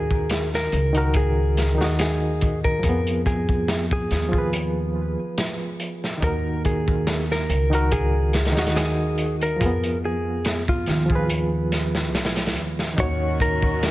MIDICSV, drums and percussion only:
0, 0, Header, 1, 2, 480
1, 0, Start_track
1, 0, Key_signature, -6, "minor"
1, 0, Tempo, 845070
1, 1617, Time_signature, 4, 2, 24, 8
1, 7900, End_track
2, 0, Start_track
2, 0, Title_t, "Drums"
2, 60, Note_on_c, 9, 36, 86
2, 117, Note_off_c, 9, 36, 0
2, 168, Note_on_c, 9, 42, 80
2, 176, Note_on_c, 9, 38, 114
2, 224, Note_off_c, 9, 42, 0
2, 232, Note_off_c, 9, 38, 0
2, 307, Note_on_c, 9, 38, 39
2, 364, Note_off_c, 9, 38, 0
2, 410, Note_on_c, 9, 42, 59
2, 467, Note_off_c, 9, 42, 0
2, 537, Note_on_c, 9, 42, 40
2, 594, Note_off_c, 9, 42, 0
2, 646, Note_on_c, 9, 42, 76
2, 651, Note_on_c, 9, 36, 111
2, 702, Note_off_c, 9, 42, 0
2, 708, Note_off_c, 9, 36, 0
2, 894, Note_on_c, 9, 42, 62
2, 898, Note_on_c, 9, 38, 44
2, 951, Note_off_c, 9, 42, 0
2, 955, Note_off_c, 9, 38, 0
2, 1027, Note_on_c, 9, 38, 44
2, 1084, Note_off_c, 9, 38, 0
2, 1130, Note_on_c, 9, 42, 89
2, 1134, Note_on_c, 9, 38, 111
2, 1186, Note_off_c, 9, 42, 0
2, 1191, Note_off_c, 9, 38, 0
2, 1371, Note_on_c, 9, 42, 64
2, 1376, Note_on_c, 9, 36, 83
2, 1427, Note_off_c, 9, 42, 0
2, 1433, Note_off_c, 9, 36, 0
2, 1502, Note_on_c, 9, 36, 81
2, 1559, Note_off_c, 9, 36, 0
2, 1608, Note_on_c, 9, 42, 91
2, 1609, Note_on_c, 9, 36, 108
2, 1665, Note_off_c, 9, 36, 0
2, 1665, Note_off_c, 9, 42, 0
2, 1743, Note_on_c, 9, 42, 46
2, 1799, Note_off_c, 9, 42, 0
2, 1851, Note_on_c, 9, 36, 86
2, 1855, Note_on_c, 9, 42, 65
2, 1908, Note_off_c, 9, 36, 0
2, 1912, Note_off_c, 9, 42, 0
2, 1981, Note_on_c, 9, 36, 89
2, 2038, Note_off_c, 9, 36, 0
2, 2092, Note_on_c, 9, 42, 85
2, 2093, Note_on_c, 9, 38, 117
2, 2149, Note_off_c, 9, 38, 0
2, 2149, Note_off_c, 9, 42, 0
2, 2222, Note_on_c, 9, 36, 97
2, 2279, Note_off_c, 9, 36, 0
2, 2333, Note_on_c, 9, 42, 67
2, 2337, Note_on_c, 9, 38, 39
2, 2390, Note_off_c, 9, 42, 0
2, 2394, Note_off_c, 9, 38, 0
2, 2460, Note_on_c, 9, 36, 87
2, 2517, Note_off_c, 9, 36, 0
2, 2573, Note_on_c, 9, 42, 91
2, 2630, Note_off_c, 9, 42, 0
2, 3054, Note_on_c, 9, 42, 87
2, 3056, Note_on_c, 9, 38, 124
2, 3111, Note_off_c, 9, 42, 0
2, 3113, Note_off_c, 9, 38, 0
2, 3293, Note_on_c, 9, 42, 60
2, 3350, Note_off_c, 9, 42, 0
2, 3430, Note_on_c, 9, 38, 39
2, 3486, Note_off_c, 9, 38, 0
2, 3536, Note_on_c, 9, 36, 99
2, 3536, Note_on_c, 9, 42, 83
2, 3593, Note_off_c, 9, 36, 0
2, 3593, Note_off_c, 9, 42, 0
2, 3776, Note_on_c, 9, 42, 61
2, 3778, Note_on_c, 9, 36, 86
2, 3833, Note_off_c, 9, 42, 0
2, 3835, Note_off_c, 9, 36, 0
2, 3907, Note_on_c, 9, 36, 99
2, 3963, Note_off_c, 9, 36, 0
2, 4016, Note_on_c, 9, 38, 119
2, 4018, Note_on_c, 9, 42, 89
2, 4072, Note_off_c, 9, 38, 0
2, 4075, Note_off_c, 9, 42, 0
2, 4154, Note_on_c, 9, 38, 36
2, 4210, Note_off_c, 9, 38, 0
2, 4258, Note_on_c, 9, 42, 61
2, 4314, Note_off_c, 9, 42, 0
2, 4389, Note_on_c, 9, 42, 41
2, 4446, Note_off_c, 9, 42, 0
2, 4496, Note_on_c, 9, 42, 82
2, 4499, Note_on_c, 9, 36, 113
2, 4553, Note_off_c, 9, 42, 0
2, 4556, Note_off_c, 9, 36, 0
2, 4733, Note_on_c, 9, 42, 71
2, 4740, Note_on_c, 9, 38, 82
2, 4790, Note_off_c, 9, 42, 0
2, 4796, Note_off_c, 9, 38, 0
2, 4801, Note_on_c, 9, 42, 55
2, 4808, Note_on_c, 9, 38, 76
2, 4858, Note_off_c, 9, 42, 0
2, 4865, Note_off_c, 9, 38, 0
2, 4867, Note_on_c, 9, 38, 89
2, 4868, Note_on_c, 9, 42, 73
2, 4922, Note_off_c, 9, 42, 0
2, 4922, Note_on_c, 9, 42, 65
2, 4924, Note_off_c, 9, 38, 0
2, 4924, Note_on_c, 9, 38, 84
2, 4977, Note_off_c, 9, 38, 0
2, 4977, Note_on_c, 9, 38, 125
2, 4978, Note_off_c, 9, 42, 0
2, 4978, Note_on_c, 9, 42, 86
2, 5034, Note_off_c, 9, 38, 0
2, 5035, Note_off_c, 9, 42, 0
2, 5213, Note_on_c, 9, 42, 64
2, 5270, Note_off_c, 9, 42, 0
2, 5347, Note_on_c, 9, 42, 39
2, 5404, Note_off_c, 9, 42, 0
2, 5458, Note_on_c, 9, 36, 110
2, 5458, Note_on_c, 9, 42, 93
2, 5514, Note_off_c, 9, 36, 0
2, 5515, Note_off_c, 9, 42, 0
2, 5586, Note_on_c, 9, 42, 47
2, 5643, Note_off_c, 9, 42, 0
2, 5934, Note_on_c, 9, 42, 77
2, 5940, Note_on_c, 9, 38, 114
2, 5990, Note_off_c, 9, 42, 0
2, 5997, Note_off_c, 9, 38, 0
2, 6067, Note_on_c, 9, 36, 92
2, 6124, Note_off_c, 9, 36, 0
2, 6171, Note_on_c, 9, 42, 62
2, 6180, Note_on_c, 9, 38, 40
2, 6227, Note_off_c, 9, 42, 0
2, 6237, Note_off_c, 9, 38, 0
2, 6303, Note_on_c, 9, 36, 100
2, 6360, Note_off_c, 9, 36, 0
2, 6416, Note_on_c, 9, 42, 88
2, 6473, Note_off_c, 9, 42, 0
2, 6657, Note_on_c, 9, 42, 69
2, 6659, Note_on_c, 9, 38, 39
2, 6714, Note_off_c, 9, 42, 0
2, 6716, Note_off_c, 9, 38, 0
2, 6786, Note_on_c, 9, 38, 49
2, 6843, Note_off_c, 9, 38, 0
2, 6900, Note_on_c, 9, 38, 90
2, 6901, Note_on_c, 9, 42, 74
2, 6956, Note_off_c, 9, 42, 0
2, 6956, Note_on_c, 9, 42, 60
2, 6957, Note_off_c, 9, 38, 0
2, 6958, Note_on_c, 9, 38, 97
2, 7012, Note_off_c, 9, 42, 0
2, 7015, Note_off_c, 9, 38, 0
2, 7022, Note_on_c, 9, 42, 66
2, 7025, Note_on_c, 9, 38, 77
2, 7078, Note_off_c, 9, 42, 0
2, 7080, Note_on_c, 9, 42, 64
2, 7082, Note_off_c, 9, 38, 0
2, 7083, Note_on_c, 9, 38, 85
2, 7132, Note_off_c, 9, 42, 0
2, 7132, Note_on_c, 9, 42, 69
2, 7140, Note_off_c, 9, 38, 0
2, 7189, Note_off_c, 9, 42, 0
2, 7265, Note_on_c, 9, 38, 42
2, 7322, Note_off_c, 9, 38, 0
2, 7372, Note_on_c, 9, 36, 127
2, 7374, Note_on_c, 9, 42, 90
2, 7429, Note_off_c, 9, 36, 0
2, 7431, Note_off_c, 9, 42, 0
2, 7612, Note_on_c, 9, 36, 82
2, 7618, Note_on_c, 9, 42, 70
2, 7669, Note_off_c, 9, 36, 0
2, 7674, Note_off_c, 9, 42, 0
2, 7739, Note_on_c, 9, 36, 81
2, 7796, Note_off_c, 9, 36, 0
2, 7854, Note_on_c, 9, 42, 88
2, 7856, Note_on_c, 9, 38, 111
2, 7900, Note_off_c, 9, 38, 0
2, 7900, Note_off_c, 9, 42, 0
2, 7900, End_track
0, 0, End_of_file